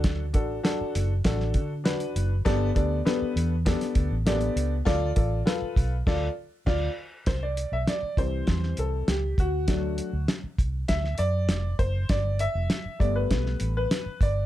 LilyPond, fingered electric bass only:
\new Staff \with { instrumentName = "Fingered electric bass" } { \clef bass \time 4/4 \key d \dorian \tempo 4 = 100 d,8 a,,8 r8 fis,,8 a,,8 d4 fis,,8 | g,,8 d,8 r8 e,8. r16 d,16 a,,8. des,8 | d,8 a,,8 r8 b,,8 d,8 r8 d,8 r8 | c,8. b,,16 r8 c,8 e,8 c,8 des,8 d,8~ |
d,8. d,16 r8 c,8 d,8 fis,8 f,,8 fis,,8 | g,,8. f,,16 r8 g,,8 b,,8 a,,8 r8 g,,8 | }